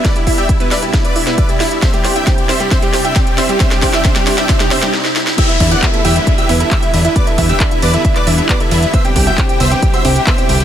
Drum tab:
CC |----------------|----------------|----------------|x---------------|
RD |----------------|----------------|----------------|--x---x---x---x-|
HH |xxoxxxoxxxoxxxox|xxoxxxoxxxoxxxox|xxoxxxoxxxox----|xxoxxxoxxxoxxxox|
CP |----------------|----------------|----------------|----x-------x---|
SD |o-----o-o--o--o-|o-o-o-o-o-o-o-o-|oooooooooooooooo|----------------|
BD |o-o-o---o---o---|o---o---o---o---|o-o-o---o-------|o-o-o---o---o---|

CC |----------------|----------------|
RD |--x---x---x---x-|--x---x---x---x-|
HH |xxoxxxoxxxoxxxox|xxoxxxoxxxoxxxox|
CP |----x----x--x---|----x-------x---|
SD |----------------|----------------|
BD |o-o-o---o---o---|o-o-o---o---o---|